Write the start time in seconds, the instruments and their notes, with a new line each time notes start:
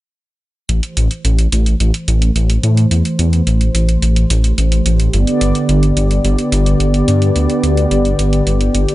0.69 detuned saw bass A1, analog synth pad E3 A3 G4 C5, closed hi-hat
0.83 closed hi-hat
0.97 detuned saw bass A1, closed hi-hat
1.11 closed hi-hat
1.25 detuned saw bass A1, closed hi-hat
1.39 closed hi-hat
1.52 detuned saw bass A1, closed hi-hat
1.66 closed hi-hat
1.80 detuned saw bass A1, closed hi-hat
1.94 closed hi-hat
2.08 detuned saw bass A1, closed hi-hat
2.22 closed hi-hat
2.36 detuned saw bass A1, closed hi-hat
2.50 closed hi-hat
2.63 detuned saw bass A2, closed hi-hat
2.77 closed hi-hat
2.91 detuned saw bass E2, closed hi-hat
3.05 closed hi-hat
3.19 detuned saw bass E2, closed hi-hat
3.33 closed hi-hat
3.47 detuned saw bass A1, closed hi-hat
3.61 closed hi-hat
3.75 detuned saw bass A1, closed hi-hat
3.89 closed hi-hat
4.02 detuned saw bass A1, closed hi-hat
4.16 closed hi-hat
4.30 detuned saw bass A1, closed hi-hat
4.44 closed hi-hat
4.58 detuned saw bass A1, closed hi-hat
4.72 closed hi-hat
4.86 detuned saw bass A1, closed hi-hat
5.00 closed hi-hat
5.13 detuned saw bass G1, analog synth pad D3 B3 D5, closed hi-hat
5.27 closed hi-hat
5.41 detuned saw bass G1, closed hi-hat
5.55 closed hi-hat
5.69 detuned saw bass G1, closed hi-hat
5.83 closed hi-hat
5.97 detuned saw bass G1, closed hi-hat
6.11 closed hi-hat
6.25 detuned saw bass G1, closed hi-hat
6.39 closed hi-hat
6.52 detuned saw bass G1, closed hi-hat
6.66 closed hi-hat
6.80 detuned saw bass G1, closed hi-hat
6.94 closed hi-hat
7.08 detuned saw bass G2, closed hi-hat
7.22 closed hi-hat
7.36 detuned saw bass D2, closed hi-hat
7.50 closed hi-hat
7.64 detuned saw bass D2, closed hi-hat
7.77 closed hi-hat
7.91 detuned saw bass G1, closed hi-hat
8.05 closed hi-hat
8.19 detuned saw bass G1, closed hi-hat
8.33 closed hi-hat
8.47 detuned saw bass G1, closed hi-hat
8.61 closed hi-hat
8.75 detuned saw bass G1, closed hi-hat
8.89 closed hi-hat